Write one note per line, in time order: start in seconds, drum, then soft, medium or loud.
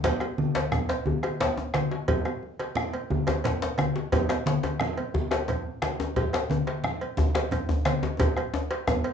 0.03 bombo low medium
0.03 cowbell medium
0.03 djembe slap medium
0.03 djembe slap soft
0.03 high conga soft
0.03 low conga medium
0.03 djembe bass medium
0.20 bombo rim medium
0.20 cowbell soft
0.20 djembe tone medium
0.38 bombo rim soft
0.38 djembe slap soft
0.38 high conga medium
0.55 cowbell soft
0.55 djembe slap medium
0.72 bombo rim medium
0.72 high conga soft
0.72 djembe tone medium
0.72 low conga medium
0.89 bombo rim soft
0.89 cowbell medium
0.89 djembe slap medium
1.06 bombo low medium
1.06 high conga medium
1.06 djembe bass medium
1.23 bombo rim medium
1.23 cowbell soft
1.23 djembe slap medium
1.23 high conga soft
1.23 djembe tone medium
1.40 bombo rim soft
1.40 cowbell medium
1.40 djembe slap loud
1.40 low conga medium
1.57 high conga soft
1.57 djembe tone medium
1.74 bombo rim medium
1.74 cowbell soft
1.74 djembe slap medium
1.74 high conga medium
1.91 djembe slap medium
1.91 high conga soft
2.08 bombo low medium
2.08 cowbell medium
2.08 low conga medium
2.08 djembe bass medium
2.25 bombo rim medium
2.25 cowbell soft
2.25 high conga soft
2.25 djembe tone medium
2.43 djembe slap soft
2.59 bombo rim soft
2.59 cowbell soft
2.59 djembe slap medium
2.59 high conga soft
2.75 bombo rim loud
2.75 djembe slap soft
2.75 low conga medium
2.93 cowbell soft
2.93 high conga soft
3.10 bombo rim soft
3.10 bombo low medium
3.10 djembe slap soft
3.10 high conga medium
3.10 djembe bass medium
3.27 bombo rim medium
3.27 cowbell medium
3.27 djembe slap medium
3.27 high conga soft
3.27 djembe tone loud
3.27 djembe tone medium
3.44 bombo rim soft
3.44 cowbell soft
3.44 djembe slap medium
3.44 low conga medium
3.62 djembe slap medium
3.78 bombo rim loud
3.78 cowbell soft
3.78 djembe slap soft
3.78 high conga medium
3.78 djembe tone medium
3.96 djembe slap medium
4.12 bombo low loud
4.12 cowbell medium
4.12 djembe tone loud
4.12 djembe bass medium
4.12 low conga medium
4.29 bombo rim medium
4.29 cowbell soft
4.29 djembe slap medium
4.29 djembe tone medium
4.29 high conga soft
4.46 djembe slap soft
4.46 djembe slap medium
4.46 high conga medium
4.63 bombo rim soft
4.63 cowbell soft
4.63 djembe slap medium
4.63 djembe tone medium
4.63 high conga soft
4.80 bombo rim medium
4.80 djembe slap soft
4.80 low conga medium
4.97 cowbell soft
4.97 high conga soft
5.14 bombo rim soft
5.14 bombo low medium
5.14 djembe slap soft
5.14 high conga medium
5.14 djembe bass medium
5.31 bombo rim medium
5.31 cowbell soft
5.31 djembe slap medium
5.31 djembe tone medium
5.31 high conga soft
5.48 bombo rim soft
5.48 cowbell soft
5.48 djembe tone medium
5.48 low conga medium
5.82 bombo rim medium
5.82 djembe slap medium
5.82 high conga medium
6.00 djembe slap medium
6.00 djembe tone medium
6.16 bombo low medium
6.16 cowbell medium
6.16 low conga medium
6.16 djembe bass medium
6.33 bombo rim medium
6.33 cowbell soft
6.33 djembe slap medium
6.33 djembe tone medium
6.33 high conga soft
6.50 djembe slap soft
6.50 high conga medium
6.50 djembe tone medium
6.67 bombo rim soft
6.67 cowbell soft
6.67 djembe slap medium
6.67 high conga soft
6.84 bombo rim medium
6.84 djembe slap soft
6.84 low conga medium
7.00 cowbell soft
7.00 high conga soft
7.17 bombo rim soft
7.17 bombo low medium
7.17 djembe slap soft
7.17 high conga medium
7.17 djembe bass loud
7.17 djembe bass medium
7.35 bombo rim medium
7.35 cowbell soft
7.35 djembe slap medium
7.35 high conga soft
7.35 djembe tone medium
7.51 bombo rim soft
7.51 cowbell medium
7.51 djembe tone medium
7.51 low conga medium
7.69 djembe bass loud
7.85 bombo rim medium
7.85 cowbell soft
7.85 djembe slap medium
7.85 djembe slap soft
7.85 high conga medium
8.03 djembe slap medium
8.03 djembe tone medium
8.19 bombo low medium
8.19 cowbell medium
8.19 djembe tone loud
8.19 low conga medium
8.19 djembe bass medium
8.36 bombo rim medium
8.36 cowbell soft
8.36 djembe slap soft
8.36 djembe tone medium
8.36 high conga soft
8.54 bombo rim soft
8.54 djembe slap soft
8.54 djembe tone loud
8.71 cowbell medium
8.71 djembe slap medium
8.87 bombo rim medium
8.87 djembe tone loud
8.87 high conga soft
8.87 low conga medium
9.04 cowbell soft